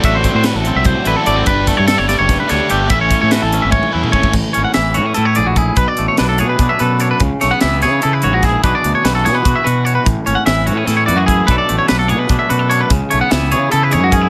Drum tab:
CC |--------------|--------------|--------------|x-------------|
HH |x-x-x-x-x-x-x-|x-x-x-x-x-x-x-|x-x-x-x-------|--x-x-x-x-x-x-|
SD |----o---------|--o-o-o-o-o---|----o---------|----o---------|
T1 |--------------|--------------|--------oo----|--------------|
T2 |--------------|--------------|-----------o--|--------------|
BD |o-o-----o-----|o-o-----o-----|o-o-----o---oo|o-----------o-|

CC |--------------|--------------|--------------|--------------|
HH |x-x-x-x-x-x-x-|x-x-x-x-x-x-x-|x-x-x-x-x-x-x-|x-x-x-x-x-x-x-|
SD |----o---------|--o-o-o-----o-|----o-o-------|----o---o-----|
T1 |--------------|--------------|--------------|--------------|
T2 |--------------|--------------|--------------|--------------|
BD |o-------o-----|o-----------o-|o-------o-----|o-----------o-|

CC |--------------|--------------|
HH |x-x-x-x-x-x-x-|x-x-x-x-x-x-x-|
SD |----o---------|----o---------|
T1 |--------------|--------------|
T2 |--------------|--------------|
BD |o-------o-----|o-----------o-|